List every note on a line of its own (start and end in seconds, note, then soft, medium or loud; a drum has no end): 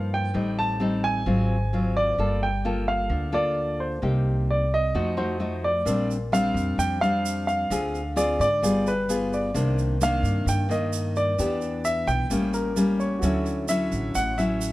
0.00 0.30 G2 medium
0.00 0.32 G2 soft
0.00 0.31 F3 soft
0.00 0.31 A#3 soft
0.00 0.31 D#4 medium
0.00 0.13 F5 medium
0.14 0.60 G5 medium
0.34 1.23 A1 medium
0.34 1.24 A2 soft
0.34 0.77 G3 soft
0.34 0.77 C4 soft
0.34 0.77 D#4 medium
0.59 1.05 A5 loud
0.80 1.22 G3 soft
0.80 1.23 C4 medium
0.80 1.23 D#4 medium
1.04 1.98 G#5 loud
1.26 2.14 G#1 medium
1.26 2.16 G#2 soft
1.26 1.56 F#3 medium
1.26 1.56 C4 soft
1.26 1.56 F4 soft
1.73 2.17 F#3 soft
1.73 2.17 C4 medium
1.73 2.17 F4 medium
1.97 2.39 D5 loud
2.18 3.06 G1 medium
2.18 3.08 G3 soft
2.18 2.48 A#3 soft
2.18 2.48 F4 medium
2.18 2.48 A4 medium
2.43 2.90 G5 medium
2.65 3.30 A#3 medium
2.65 3.30 F4 medium
2.65 3.30 A4 medium
2.88 3.35 F5 medium
3.10 3.98 D2 medium
3.10 4.00 D3 medium
3.32 3.98 A#3 soft
3.32 3.98 F4 medium
3.32 3.98 A4 medium
3.32 3.81 D5 medium
3.80 4.51 C5 medium
4.02 4.90 C2 medium
4.02 4.92 C3 soft
4.02 4.64 A#3 soft
4.02 4.64 D#4 medium
4.02 4.65 G4 soft
4.50 4.73 D5 medium
4.74 5.61 D#5 medium
4.95 5.83 F2 medium
4.95 5.84 F3 soft
4.95 5.14 A3 medium
4.95 5.14 D#4 soft
4.95 5.14 F#4 medium
5.17 5.37 A3 medium
5.17 5.37 D#4 medium
5.17 5.37 F#4 medium
5.17 5.65 C5 medium
5.40 5.71 A3 medium
5.40 5.71 D#4 medium
5.40 5.72 F#4 medium
5.64 6.07 D5 medium
5.85 6.51 A#1 medium
5.85 6.76 A#2 medium
5.85 6.16 G3 soft
5.85 6.16 C4 medium
5.85 6.16 D4 medium
5.85 shaker medium
6.11 shaker soft
6.32 6.98 G3 medium
6.32 6.98 C4 medium
6.32 6.98 D4 medium
6.32 6.76 F5 loud
6.32 shaker medium
6.54 6.76 F2 medium
6.54 shaker soft
6.78 7.66 F2 medium
6.78 7.68 F3 soft
6.78 7.00 G5 loud
6.78 shaker medium
7.01 7.67 G3 soft
7.01 7.67 C4 soft
7.01 7.67 D4 medium
7.01 7.46 F5 loud
7.01 shaker soft
7.26 shaker medium
7.47 8.12 F5 medium
7.47 shaker soft
7.70 8.35 D2 medium
7.70 8.60 D3 medium
7.70 8.00 C4 soft
7.70 8.01 F4 soft
7.70 8.01 G#4 medium
7.70 shaker soft
7.95 shaker soft
8.16 8.46 C4 soft
8.16 8.46 F4 medium
8.16 8.46 G#4 medium
8.16 8.39 D5 medium
8.16 shaker medium
8.39 8.61 G#2 medium
8.39 8.88 D5 loud
8.39 shaker soft
8.62 9.51 G1 medium
8.62 9.52 G3 medium
8.62 8.92 B3 soft
8.62 8.93 F4 soft
8.62 8.93 G#4 medium
8.62 shaker medium
8.87 9.34 B4 medium
8.87 shaker soft
9.09 9.53 B3 medium
9.09 9.53 F4 medium
9.09 9.53 G#4 medium
9.09 shaker medium
9.33 9.76 D5 medium
9.33 shaker soft
9.54 10.20 C2 medium
9.54 10.44 C3 soft
9.54 9.97 D#3 medium
9.54 9.97 A#3 soft
9.54 9.97 D4 medium
9.54 shaker medium
9.78 shaker soft
10.01 10.66 D#3 soft
10.01 10.66 A#3 medium
10.01 10.66 D4 medium
10.01 10.45 F5 loud
10.01 shaker medium
10.23 10.45 G2 medium
10.23 shaker soft
10.46 11.36 G2 soft
10.46 11.34 G2 medium
10.46 10.71 G5 medium
10.46 shaker medium
10.69 11.35 D#3 medium
10.69 11.35 A#3 medium
10.69 11.18 D#5 medium
10.69 shaker soft
10.93 shaker medium
11.16 11.87 D5 medium
11.16 shaker soft
11.38 12.04 E2 medium
11.38 12.29 E3 soft
11.38 12.27 B3 soft
11.38 12.27 D4 soft
11.38 12.28 G4 medium
11.38 shaker medium
11.61 shaker soft
11.85 12.06 E5 loud
11.85 shaker medium
12.07 12.29 B1 medium
12.07 12.50 G5 loud
12.07 shaker soft
12.30 13.18 A1 medium
12.30 13.20 A2 soft
12.30 12.73 G3 soft
12.30 12.73 A#3 soft
12.30 12.73 C#4 medium
12.30 shaker medium
12.54 13.01 A#4 medium
12.54 shaker soft
12.76 13.21 G3 medium
12.76 13.21 A#3 medium
12.76 13.21 C#4 medium
12.76 shaker medium
13.00 13.42 C#5 medium
13.00 shaker soft
13.19 13.87 D2 medium
13.19 14.12 D3 medium
13.19 13.65 F#3 medium
13.19 14.72 F#4 soft
13.19 14.72 A4 soft
13.19 shaker soft
13.23 13.65 C#4 medium
13.23 13.65 E4 medium
13.23 14.72 C#5 soft
13.23 14.72 E5 soft
13.46 shaker soft
13.68 14.35 F#3 medium
13.68 14.35 C#4 medium
13.68 14.35 E4 medium
13.68 14.16 E5 medium
13.68 shaker medium
13.92 14.13 A1 medium
13.92 shaker soft
14.15 14.72 A1 medium
14.15 14.72 A2 soft
14.15 14.39 F#5 medium
14.15 shaker medium
14.38 14.72 F#3 medium
14.38 14.72 C#4 soft
14.38 14.72 E4 medium
14.38 14.72 E5 medium
14.38 shaker soft
14.61 shaker medium